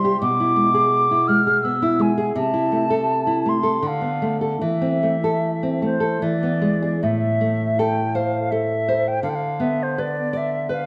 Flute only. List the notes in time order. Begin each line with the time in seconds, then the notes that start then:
Already playing: C6
0.21 D6
1.28 F6
1.64 E6
2.02 G#5
2.37 A5
3.49 C6
3.88 F5
4.64 E5
5.85 C5
6.22 D5
7.04 E5
7.79 G5
8.15 F5
8.51 E5
9.08 G5
9.23 F5
9.30 G5
9.35 F5
9.61 E5
9.83 C5
9.99 D5
10.37 E5
10.74 F5